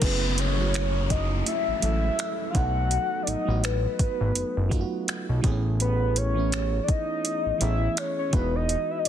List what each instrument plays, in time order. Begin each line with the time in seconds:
0.00 analog synth bass F#1, fm electric piano F#3 A3 C#4 E4 G#4, soft synth lead B4, kick, closed hi-hat, crash, downlifter
0.38 soft synth lead C#5, closed hi-hat
0.56 fm electric piano F#3 A3 C#4 E4
0.61 fm electric piano F#4
0.74 finger snap, closed hi-hat
1.10 soft synth lead D#5, kick, closed hi-hat
1.42 soft synth lead D#5
1.46 soft synth lead E5, closed hi-hat
1.68 analog synth bass A1
1.80 analog synth bass A1, fm electric piano F#3 A3 C#4 E4, soft synth lead E5, closed hi-hat
1.85 fm electric piano A4
2.19 finger snap, closed hi-hat
2.50 fm electric piano F#3 A3, soft synth lead F5
2.55 analog synth bass B1, fm electric piano B3 D#4 A4, soft synth lead F#5, kick, closed hi-hat
2.91 closed hi-hat
3.23 soft synth lead D5
3.27 analog synth bass A1, soft synth lead D#5, closed hi-hat
3.45 analog synth bass A1, fm electric piano F#3 A3 B3 D#4
3.50 fm electric piano F#4
3.64 soft synth lead B4, finger snap, closed hi-hat
3.99 analog synth bass G#1, kick, closed hi-hat
4.21 analog synth bass G#1
4.35 analog synth bass F#1, closed hi-hat
4.57 analog synth bass F#1
4.69 fm electric piano F#3 A3 B3 D#4, kick, closed hi-hat
4.74 fm electric piano F4
4.81 fm electric piano F#4
5.08 finger snap, closed hi-hat
5.29 analog synth bass B1
5.41 analog synth bass A1, fm electric piano E3 A3 B3 C4, kick, closed hi-hat
5.46 fm electric piano G#4
5.52 fm electric piano C#4
5.80 soft synth lead B4, closed hi-hat
6.16 soft synth lead C#5, closed hi-hat
6.34 fm electric piano E3 A3 B3 C#4
6.39 fm electric piano E4
6.52 finger snap, closed hi-hat
6.84 soft synth lead D5
6.88 soft synth lead D#5, kick, closed hi-hat
7.25 closed hi-hat
7.46 analog synth bass A1
7.58 analog synth bass A1, fm electric piano E3 A3 B3 C#4, soft synth lead E5, closed hi-hat
7.63 fm electric piano G#4
7.97 soft synth lead C#5, finger snap, closed hi-hat
8.19 soft synth lead C#5
8.30 analog synth bass E1, fm electric piano E3 G#3 B3 D#4, soft synth lead B4, kick, closed hi-hat
8.35 fm electric piano F#4
8.55 soft synth lead D#5
8.69 closed hi-hat
8.91 soft synth lead E5
8.99 soft synth lead D#5
9.05 closed hi-hat